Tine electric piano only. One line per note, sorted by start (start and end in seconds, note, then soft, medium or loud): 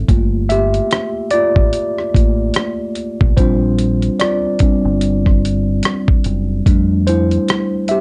0.09 1.28 A3 medium
0.09 1.29 A#3 soft
0.09 1.29 F4 medium
0.49 1.29 G4 medium
0.49 1.28 E5 loud
1.31 2.14 F4 medium
1.31 3.33 D5 medium
2.15 2.51 A3 soft
2.15 2.52 A#3 soft
2.15 2.52 F4 soft
3.37 4.57 G3 medium
3.37 4.57 C4 soft
3.37 4.58 D4 medium
3.37 4.17 F4 medium
3.37 4.15 C5 medium
4.20 5.40 F4 medium
4.20 5.39 D5 medium
4.61 4.98 G3 soft
4.61 4.98 C4 soft
4.61 4.99 D4 medium
6.67 8.01 G3 soft
6.67 8.01 A3 soft
6.67 8.01 D4 medium
7.07 7.86 E4 medium
7.07 7.92 C5 medium
7.89 8.01 G4 medium
7.89 8.01 E5 loud